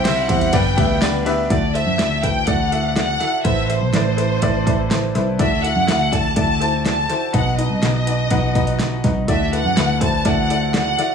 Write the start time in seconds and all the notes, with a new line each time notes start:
Already playing: C2 C3 C4 E4 G4 C5 E5
0.04 G3 C4 E4 G4 C5 E5, snare, ride, tambourine
0.18 F#5
0.28 E2 C4 E4 G4 C5 E5, kick, ride
0.41 ride
0.53 G1 G2 G3 B3 D4 G4 B4 D5 G5, kick, ride
0.77 D2 B3 D4 G4 B4 E5, kick, ride
1.01 G3 B3 D4 G4 B4 D5, snare, ride, tambourine
1.25 B3 D4 G4 B4 E5, snare, ride
1.50 D2 D3 E4 F#4 A4 D5, kick, closed hi-hat
1.74 E4 F#4 A4 C5 E5, closed hi-hat
1.87 F#2
1.98 D2 E4 F#4 A4 D5, snare, closed hi-hat
2.22 E4 F#4 A4 B4 G5, kick, closed hi-hat
2.47 D2 E4 F#4 A4 D5 F#5, kick, closed hi-hat
2.72 E4 F#4 A4 E5, closed hi-hat
2.95 E4 F#4 A4 D5 F#5, snare, closed hi-hat
3.20 E4 F#4 A4 E5, snare, closed hi-hat
3.44 A1 A2 E4 A4 B4 C5 E5, kick, closed hi-hat
3.69 E4 A4 B4 C5, closed hi-hat
3.81 B1
3.93 A1 E4 A4 B4 D5, snare, closed hi-hat
4.17 E4 A4 B4 C5, closed hi-hat
4.42 A1 E4 A4 B4 D5, kick, closed hi-hat
4.66 E4 A4 B4 D5, kick, closed hi-hat
4.90 E4 A4 B4 C5, snare, closed hi-hat
5.15 C2 E4 A4 B4 C5, snare, closed hi-hat
5.39 D2 D3 E4 F#4 A4 D5 E5, kick, closed hi-hat
5.64 E4 F#4 A4 E5 F#5, closed hi-hat
5.76 F#2
5.87 D2 E4 F#4 A4 E5, snare, closed hi-hat
6.12 E4 F#4 A4 D5 A5, kick, closed hi-hat
6.36 D2 E4 F#4 A4 D5 A5, kick, closed hi-hat
6.60 E4 F#4 A4 C5, closed hi-hat
6.85 E4 F#4 A4 D5 A5, snare, closed hi-hat
7.09 E4 F#4 A4 C5, snare, closed hi-hat
7.33 B1 B2 D#4 F#4 B4 D#5 F#5, kick, closed hi-hat
7.58 D#4 F#4 B4 D#5, closed hi-hat
7.70 C2
7.82 B1 D#4 F#4 B4 D#5, snare, closed hi-hat
8.06 D#4 F#4 B4 D#5, closed hi-hat
8.30 B1 D#4 F#4 B4 F#5, kick, closed hi-hat
8.55 D#4 F#4 B4 D#5, kick, closed hi-hat
8.67 closed hi-hat
8.79 D#4 F#4 B4 F#5, snare, closed hi-hat
9.04 C2 D#4 F#4 B4 D#5, kick, snare, closed hi-hat
9.28 D2 D3 E4 F#4 A4 D5 E5, kick, closed hi-hat
9.52 E4 F#4 A4 B4 F#5, closed hi-hat
9.65 F#2
9.76 D2 E4 F#4 A4 B4, snare, closed hi-hat
10.01 E4 F#4 A4 C5 A5, kick, closed hi-hat
10.25 D2 E4 F#4 A4 D5 F#5, kick, closed hi-hat
10.50 E4 F#4 A4 D5, closed hi-hat
10.74 E4 F#4 A4 D5 F#5, snare, closed hi-hat
10.98 E4 F#4 A4 D5, snare, closed hi-hat